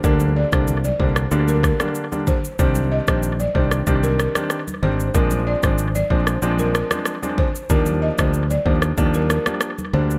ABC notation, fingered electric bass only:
X:1
M:4/4
L:1/16
Q:1/4=94
K:Eb
V:1 name="Fingered electric bass" clef=bass
D,,3 C,,3 C,,2 D,,3 z4 z | C,,3 B,,,3 C,,2 C,,3 z3 A,,,2 | B,,,3 A,,,3 B,,,2 B,,,3 z4 z | E,,3 D,,3 E,,2 E,,3 z3 D,,2 |]